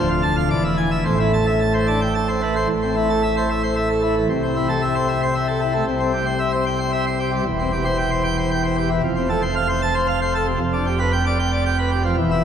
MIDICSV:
0, 0, Header, 1, 2, 480
1, 0, Start_track
1, 0, Tempo, 545951
1, 930, Time_signature, 3, 2, 24, 8
1, 2377, Tempo, 531915
1, 3817, Tempo, 524934
1, 11261, End_track
2, 0, Start_track
2, 0, Title_t, "Pipe organ"
2, 0, Program_c, 0, 19
2, 0, Note_on_c, 0, 26, 99
2, 0, Note_on_c, 0, 38, 88
2, 86, Note_on_c, 0, 65, 72
2, 194, Note_off_c, 0, 65, 0
2, 198, Note_on_c, 0, 81, 88
2, 309, Note_off_c, 0, 81, 0
2, 321, Note_on_c, 0, 77, 77
2, 426, Note_off_c, 0, 77, 0
2, 429, Note_off_c, 0, 26, 0
2, 430, Note_off_c, 0, 38, 0
2, 441, Note_on_c, 0, 40, 90
2, 442, Note_on_c, 0, 28, 90
2, 442, Note_on_c, 0, 74, 69
2, 552, Note_off_c, 0, 74, 0
2, 563, Note_on_c, 0, 64, 75
2, 672, Note_off_c, 0, 64, 0
2, 681, Note_on_c, 0, 80, 86
2, 792, Note_off_c, 0, 80, 0
2, 801, Note_on_c, 0, 76, 71
2, 907, Note_off_c, 0, 76, 0
2, 912, Note_off_c, 0, 40, 0
2, 913, Note_off_c, 0, 28, 0
2, 925, Note_on_c, 0, 72, 74
2, 926, Note_on_c, 0, 33, 76
2, 927, Note_on_c, 0, 45, 75
2, 1036, Note_off_c, 0, 72, 0
2, 1048, Note_on_c, 0, 64, 66
2, 1158, Note_off_c, 0, 64, 0
2, 1172, Note_on_c, 0, 81, 84
2, 1280, Note_off_c, 0, 81, 0
2, 1287, Note_on_c, 0, 76, 77
2, 1398, Note_off_c, 0, 76, 0
2, 1409, Note_on_c, 0, 81, 69
2, 1519, Note_off_c, 0, 81, 0
2, 1528, Note_on_c, 0, 72, 63
2, 1639, Note_off_c, 0, 72, 0
2, 1648, Note_on_c, 0, 62, 50
2, 1648, Note_on_c, 0, 81, 70
2, 1753, Note_off_c, 0, 62, 0
2, 1759, Note_off_c, 0, 81, 0
2, 1769, Note_on_c, 0, 79, 61
2, 1874, Note_off_c, 0, 79, 0
2, 1886, Note_on_c, 0, 81, 76
2, 1998, Note_off_c, 0, 81, 0
2, 2008, Note_on_c, 0, 72, 64
2, 2119, Note_off_c, 0, 72, 0
2, 2130, Note_on_c, 0, 57, 53
2, 2130, Note_on_c, 0, 71, 58
2, 2235, Note_off_c, 0, 71, 0
2, 2240, Note_off_c, 0, 57, 0
2, 2249, Note_on_c, 0, 72, 60
2, 2339, Note_off_c, 0, 33, 0
2, 2339, Note_off_c, 0, 45, 0
2, 2354, Note_off_c, 0, 72, 0
2, 2366, Note_on_c, 0, 45, 80
2, 2367, Note_on_c, 0, 33, 84
2, 2484, Note_on_c, 0, 60, 65
2, 2597, Note_off_c, 0, 60, 0
2, 2610, Note_on_c, 0, 64, 70
2, 2721, Note_off_c, 0, 64, 0
2, 2730, Note_on_c, 0, 69, 71
2, 2840, Note_off_c, 0, 69, 0
2, 2850, Note_on_c, 0, 76, 101
2, 2960, Note_off_c, 0, 76, 0
2, 2978, Note_on_c, 0, 72, 66
2, 3084, Note_off_c, 0, 72, 0
2, 3094, Note_on_c, 0, 76, 68
2, 3202, Note_off_c, 0, 76, 0
2, 3213, Note_on_c, 0, 72, 64
2, 3322, Note_off_c, 0, 72, 0
2, 3330, Note_on_c, 0, 76, 66
2, 3440, Note_off_c, 0, 76, 0
2, 3451, Note_on_c, 0, 69, 67
2, 3561, Note_off_c, 0, 69, 0
2, 3570, Note_on_c, 0, 64, 59
2, 3680, Note_off_c, 0, 64, 0
2, 3695, Note_on_c, 0, 52, 54
2, 3775, Note_off_c, 0, 33, 0
2, 3775, Note_off_c, 0, 45, 0
2, 3798, Note_off_c, 0, 52, 0
2, 3811, Note_on_c, 0, 48, 88
2, 3812, Note_on_c, 0, 36, 81
2, 3933, Note_on_c, 0, 60, 58
2, 4043, Note_off_c, 0, 60, 0
2, 4052, Note_on_c, 0, 64, 66
2, 4163, Note_off_c, 0, 64, 0
2, 4173, Note_on_c, 0, 69, 68
2, 4284, Note_off_c, 0, 69, 0
2, 4293, Note_on_c, 0, 76, 90
2, 4404, Note_off_c, 0, 76, 0
2, 4413, Note_on_c, 0, 72, 73
2, 4524, Note_off_c, 0, 72, 0
2, 4535, Note_on_c, 0, 76, 69
2, 4646, Note_off_c, 0, 76, 0
2, 4661, Note_on_c, 0, 72, 67
2, 4769, Note_off_c, 0, 72, 0
2, 4776, Note_on_c, 0, 76, 72
2, 4886, Note_off_c, 0, 76, 0
2, 4894, Note_on_c, 0, 69, 66
2, 5004, Note_off_c, 0, 69, 0
2, 5014, Note_on_c, 0, 64, 59
2, 5123, Note_off_c, 0, 64, 0
2, 5132, Note_on_c, 0, 57, 59
2, 5220, Note_off_c, 0, 48, 0
2, 5221, Note_off_c, 0, 36, 0
2, 5237, Note_off_c, 0, 57, 0
2, 5252, Note_on_c, 0, 48, 83
2, 5255, Note_on_c, 0, 36, 92
2, 5371, Note_on_c, 0, 60, 65
2, 5481, Note_off_c, 0, 60, 0
2, 5493, Note_on_c, 0, 67, 67
2, 5603, Note_off_c, 0, 67, 0
2, 5608, Note_on_c, 0, 72, 70
2, 5721, Note_off_c, 0, 72, 0
2, 5730, Note_on_c, 0, 76, 72
2, 5842, Note_off_c, 0, 76, 0
2, 5853, Note_on_c, 0, 72, 67
2, 5964, Note_off_c, 0, 72, 0
2, 5978, Note_on_c, 0, 79, 94
2, 6088, Note_off_c, 0, 79, 0
2, 6099, Note_on_c, 0, 72, 75
2, 6208, Note_off_c, 0, 72, 0
2, 6217, Note_on_c, 0, 76, 74
2, 6327, Note_off_c, 0, 76, 0
2, 6342, Note_on_c, 0, 72, 65
2, 6450, Note_off_c, 0, 72, 0
2, 6462, Note_on_c, 0, 67, 65
2, 6570, Note_off_c, 0, 67, 0
2, 6584, Note_on_c, 0, 55, 60
2, 6664, Note_off_c, 0, 48, 0
2, 6665, Note_off_c, 0, 36, 0
2, 6686, Note_off_c, 0, 55, 0
2, 6699, Note_on_c, 0, 28, 94
2, 6699, Note_on_c, 0, 40, 91
2, 6826, Note_on_c, 0, 60, 73
2, 6933, Note_off_c, 0, 60, 0
2, 6944, Note_on_c, 0, 67, 75
2, 7052, Note_off_c, 0, 67, 0
2, 7062, Note_on_c, 0, 72, 75
2, 7171, Note_off_c, 0, 72, 0
2, 7184, Note_on_c, 0, 79, 105
2, 7292, Note_off_c, 0, 79, 0
2, 7301, Note_on_c, 0, 72, 72
2, 7411, Note_off_c, 0, 72, 0
2, 7419, Note_on_c, 0, 79, 75
2, 7530, Note_off_c, 0, 79, 0
2, 7544, Note_on_c, 0, 72, 77
2, 7652, Note_off_c, 0, 72, 0
2, 7666, Note_on_c, 0, 79, 78
2, 7774, Note_off_c, 0, 79, 0
2, 7785, Note_on_c, 0, 72, 71
2, 7893, Note_off_c, 0, 72, 0
2, 7907, Note_on_c, 0, 67, 70
2, 8014, Note_off_c, 0, 67, 0
2, 8023, Note_on_c, 0, 52, 62
2, 8107, Note_off_c, 0, 28, 0
2, 8107, Note_off_c, 0, 40, 0
2, 8127, Note_off_c, 0, 52, 0
2, 8144, Note_on_c, 0, 29, 99
2, 8144, Note_on_c, 0, 41, 91
2, 8266, Note_on_c, 0, 60, 74
2, 8372, Note_off_c, 0, 60, 0
2, 8386, Note_on_c, 0, 69, 80
2, 8492, Note_off_c, 0, 69, 0
2, 8501, Note_on_c, 0, 72, 86
2, 8609, Note_off_c, 0, 72, 0
2, 8623, Note_on_c, 0, 77, 83
2, 8730, Note_off_c, 0, 77, 0
2, 8745, Note_on_c, 0, 72, 82
2, 8852, Note_off_c, 0, 72, 0
2, 8865, Note_on_c, 0, 81, 115
2, 8972, Note_off_c, 0, 81, 0
2, 8981, Note_on_c, 0, 72, 92
2, 9090, Note_off_c, 0, 72, 0
2, 9100, Note_on_c, 0, 77, 84
2, 9209, Note_off_c, 0, 77, 0
2, 9227, Note_on_c, 0, 72, 86
2, 9333, Note_off_c, 0, 72, 0
2, 9347, Note_on_c, 0, 69, 80
2, 9453, Note_off_c, 0, 69, 0
2, 9464, Note_on_c, 0, 48, 74
2, 9546, Note_off_c, 0, 29, 0
2, 9546, Note_off_c, 0, 41, 0
2, 9566, Note_off_c, 0, 48, 0
2, 9580, Note_on_c, 0, 41, 102
2, 9582, Note_on_c, 0, 29, 99
2, 9701, Note_on_c, 0, 62, 81
2, 9808, Note_off_c, 0, 62, 0
2, 9822, Note_on_c, 0, 67, 76
2, 9928, Note_off_c, 0, 67, 0
2, 9940, Note_on_c, 0, 71, 86
2, 10047, Note_off_c, 0, 71, 0
2, 10059, Note_on_c, 0, 79, 116
2, 10166, Note_off_c, 0, 79, 0
2, 10182, Note_on_c, 0, 74, 86
2, 10287, Note_off_c, 0, 74, 0
2, 10303, Note_on_c, 0, 79, 80
2, 10408, Note_off_c, 0, 79, 0
2, 10419, Note_on_c, 0, 74, 85
2, 10525, Note_off_c, 0, 74, 0
2, 10544, Note_on_c, 0, 79, 89
2, 10648, Note_off_c, 0, 79, 0
2, 10662, Note_on_c, 0, 71, 76
2, 10767, Note_off_c, 0, 71, 0
2, 10778, Note_on_c, 0, 67, 79
2, 10884, Note_off_c, 0, 67, 0
2, 10900, Note_on_c, 0, 53, 66
2, 10978, Note_off_c, 0, 41, 0
2, 10979, Note_off_c, 0, 29, 0
2, 11001, Note_off_c, 0, 53, 0
2, 11014, Note_on_c, 0, 28, 103
2, 11017, Note_on_c, 0, 40, 100
2, 11139, Note_on_c, 0, 64, 74
2, 11245, Note_off_c, 0, 64, 0
2, 11261, Note_off_c, 0, 28, 0
2, 11261, Note_off_c, 0, 40, 0
2, 11261, End_track
0, 0, End_of_file